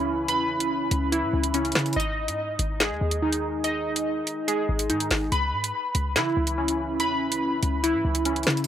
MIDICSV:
0, 0, Header, 1, 4, 480
1, 0, Start_track
1, 0, Tempo, 419580
1, 326, Time_signature, 4, 2, 24, 8
1, 9918, End_track
2, 0, Start_track
2, 0, Title_t, "Synth keys"
2, 0, Program_c, 0, 88
2, 0, Note_on_c, 0, 61, 85
2, 0, Note_on_c, 0, 64, 101
2, 0, Note_on_c, 0, 83, 118
2, 315, Note_off_c, 0, 83, 0
2, 328, Note_on_c, 0, 83, 109
2, 1269, Note_off_c, 0, 64, 0
2, 1283, Note_on_c, 0, 64, 98
2, 1750, Note_off_c, 0, 61, 0
2, 1764, Note_on_c, 0, 61, 83
2, 2244, Note_off_c, 0, 64, 0
2, 2245, Note_off_c, 0, 61, 0
2, 2245, Note_on_c, 0, 75, 108
2, 2247, Note_off_c, 0, 83, 0
2, 3203, Note_on_c, 0, 68, 94
2, 3688, Note_on_c, 0, 63, 88
2, 4152, Note_off_c, 0, 75, 0
2, 4166, Note_on_c, 0, 75, 105
2, 5109, Note_off_c, 0, 68, 0
2, 5123, Note_on_c, 0, 68, 99
2, 5588, Note_off_c, 0, 63, 0
2, 5602, Note_on_c, 0, 63, 86
2, 6084, Note_off_c, 0, 63, 0
2, 6084, Note_off_c, 0, 68, 0
2, 6086, Note_off_c, 0, 75, 0
2, 6086, Note_on_c, 0, 83, 117
2, 7044, Note_on_c, 0, 64, 101
2, 7525, Note_on_c, 0, 61, 83
2, 7996, Note_off_c, 0, 83, 0
2, 8009, Note_on_c, 0, 83, 114
2, 8950, Note_off_c, 0, 64, 0
2, 8963, Note_on_c, 0, 64, 100
2, 9431, Note_off_c, 0, 61, 0
2, 9445, Note_on_c, 0, 61, 78
2, 9918, Note_off_c, 0, 61, 0
2, 9918, Note_off_c, 0, 64, 0
2, 9918, Note_off_c, 0, 83, 0
2, 9918, End_track
3, 0, Start_track
3, 0, Title_t, "808-style bass"
3, 0, Program_c, 1, 38
3, 0, Note_on_c, 1, 37, 106
3, 325, Note_on_c, 1, 40, 102
3, 342, Note_off_c, 1, 37, 0
3, 685, Note_on_c, 1, 37, 100
3, 702, Note_off_c, 1, 40, 0
3, 1027, Note_off_c, 1, 37, 0
3, 1045, Note_on_c, 1, 37, 110
3, 1406, Note_on_c, 1, 44, 99
3, 1424, Note_off_c, 1, 37, 0
3, 1520, Note_off_c, 1, 44, 0
3, 1526, Note_on_c, 1, 37, 107
3, 1987, Note_off_c, 1, 37, 0
3, 2006, Note_on_c, 1, 49, 103
3, 2236, Note_off_c, 1, 49, 0
3, 2246, Note_on_c, 1, 32, 106
3, 2606, Note_on_c, 1, 44, 99
3, 2623, Note_off_c, 1, 32, 0
3, 2948, Note_off_c, 1, 44, 0
3, 2965, Note_on_c, 1, 32, 105
3, 3326, Note_on_c, 1, 39, 99
3, 3343, Note_off_c, 1, 32, 0
3, 3440, Note_off_c, 1, 39, 0
3, 3446, Note_on_c, 1, 39, 106
3, 4840, Note_off_c, 1, 39, 0
3, 5366, Note_on_c, 1, 32, 108
3, 5605, Note_on_c, 1, 44, 94
3, 5622, Note_off_c, 1, 32, 0
3, 5833, Note_off_c, 1, 44, 0
3, 5845, Note_on_c, 1, 32, 108
3, 6076, Note_off_c, 1, 32, 0
3, 6086, Note_on_c, 1, 37, 108
3, 6325, Note_on_c, 1, 44, 99
3, 6342, Note_off_c, 1, 37, 0
3, 6553, Note_off_c, 1, 44, 0
3, 6806, Note_on_c, 1, 37, 104
3, 7045, Note_on_c, 1, 49, 102
3, 7062, Note_off_c, 1, 37, 0
3, 7273, Note_off_c, 1, 49, 0
3, 7285, Note_on_c, 1, 37, 112
3, 8006, Note_on_c, 1, 40, 101
3, 8023, Note_off_c, 1, 37, 0
3, 8366, Note_on_c, 1, 37, 97
3, 8383, Note_off_c, 1, 40, 0
3, 8708, Note_off_c, 1, 37, 0
3, 8727, Note_on_c, 1, 37, 105
3, 9086, Note_on_c, 1, 44, 98
3, 9103, Note_off_c, 1, 37, 0
3, 9200, Note_off_c, 1, 44, 0
3, 9206, Note_on_c, 1, 37, 104
3, 9667, Note_off_c, 1, 37, 0
3, 9685, Note_on_c, 1, 49, 106
3, 9916, Note_off_c, 1, 49, 0
3, 9918, End_track
4, 0, Start_track
4, 0, Title_t, "Drums"
4, 325, Note_on_c, 9, 42, 77
4, 440, Note_off_c, 9, 42, 0
4, 690, Note_on_c, 9, 42, 80
4, 805, Note_off_c, 9, 42, 0
4, 1044, Note_on_c, 9, 42, 77
4, 1159, Note_off_c, 9, 42, 0
4, 1286, Note_on_c, 9, 42, 86
4, 1400, Note_off_c, 9, 42, 0
4, 1642, Note_on_c, 9, 42, 83
4, 1756, Note_off_c, 9, 42, 0
4, 1762, Note_on_c, 9, 42, 87
4, 1877, Note_off_c, 9, 42, 0
4, 1886, Note_on_c, 9, 42, 45
4, 1966, Note_off_c, 9, 42, 0
4, 1966, Note_on_c, 9, 42, 51
4, 2006, Note_on_c, 9, 37, 92
4, 2006, Note_on_c, 9, 38, 113
4, 2046, Note_off_c, 9, 42, 0
4, 2046, Note_on_c, 9, 42, 58
4, 2120, Note_off_c, 9, 37, 0
4, 2120, Note_off_c, 9, 38, 0
4, 2126, Note_off_c, 9, 42, 0
4, 2126, Note_on_c, 9, 42, 63
4, 2205, Note_off_c, 9, 42, 0
4, 2205, Note_on_c, 9, 42, 70
4, 2285, Note_off_c, 9, 42, 0
4, 2285, Note_on_c, 9, 42, 71
4, 2400, Note_off_c, 9, 42, 0
4, 2611, Note_on_c, 9, 42, 83
4, 2725, Note_off_c, 9, 42, 0
4, 2964, Note_on_c, 9, 42, 74
4, 3078, Note_off_c, 9, 42, 0
4, 3205, Note_on_c, 9, 38, 122
4, 3206, Note_on_c, 9, 42, 87
4, 3320, Note_off_c, 9, 38, 0
4, 3320, Note_off_c, 9, 42, 0
4, 3562, Note_on_c, 9, 42, 85
4, 3676, Note_off_c, 9, 42, 0
4, 3804, Note_on_c, 9, 42, 78
4, 3918, Note_off_c, 9, 42, 0
4, 4166, Note_on_c, 9, 42, 80
4, 4280, Note_off_c, 9, 42, 0
4, 4531, Note_on_c, 9, 42, 81
4, 4645, Note_off_c, 9, 42, 0
4, 4884, Note_on_c, 9, 42, 73
4, 4999, Note_off_c, 9, 42, 0
4, 5126, Note_on_c, 9, 42, 87
4, 5241, Note_off_c, 9, 42, 0
4, 5481, Note_on_c, 9, 42, 85
4, 5596, Note_off_c, 9, 42, 0
4, 5602, Note_on_c, 9, 42, 85
4, 5716, Note_off_c, 9, 42, 0
4, 5724, Note_on_c, 9, 42, 70
4, 5839, Note_off_c, 9, 42, 0
4, 5841, Note_on_c, 9, 46, 53
4, 5846, Note_on_c, 9, 38, 113
4, 5956, Note_off_c, 9, 46, 0
4, 5961, Note_off_c, 9, 38, 0
4, 6086, Note_on_c, 9, 42, 80
4, 6200, Note_off_c, 9, 42, 0
4, 6451, Note_on_c, 9, 42, 84
4, 6565, Note_off_c, 9, 42, 0
4, 6805, Note_on_c, 9, 42, 75
4, 6919, Note_off_c, 9, 42, 0
4, 7046, Note_on_c, 9, 38, 127
4, 7046, Note_on_c, 9, 42, 87
4, 7160, Note_off_c, 9, 38, 0
4, 7161, Note_off_c, 9, 42, 0
4, 7401, Note_on_c, 9, 42, 85
4, 7516, Note_off_c, 9, 42, 0
4, 7644, Note_on_c, 9, 42, 81
4, 7759, Note_off_c, 9, 42, 0
4, 8005, Note_on_c, 9, 42, 79
4, 8120, Note_off_c, 9, 42, 0
4, 8371, Note_on_c, 9, 42, 83
4, 8486, Note_off_c, 9, 42, 0
4, 8724, Note_on_c, 9, 42, 76
4, 8838, Note_off_c, 9, 42, 0
4, 8966, Note_on_c, 9, 42, 86
4, 9081, Note_off_c, 9, 42, 0
4, 9321, Note_on_c, 9, 42, 86
4, 9436, Note_off_c, 9, 42, 0
4, 9442, Note_on_c, 9, 42, 86
4, 9556, Note_off_c, 9, 42, 0
4, 9566, Note_on_c, 9, 42, 46
4, 9645, Note_off_c, 9, 42, 0
4, 9645, Note_on_c, 9, 42, 51
4, 9687, Note_on_c, 9, 37, 95
4, 9687, Note_on_c, 9, 38, 112
4, 9725, Note_off_c, 9, 42, 0
4, 9725, Note_on_c, 9, 42, 59
4, 9801, Note_off_c, 9, 37, 0
4, 9801, Note_off_c, 9, 38, 0
4, 9806, Note_off_c, 9, 42, 0
4, 9806, Note_on_c, 9, 42, 64
4, 9918, Note_off_c, 9, 42, 0
4, 9918, End_track
0, 0, End_of_file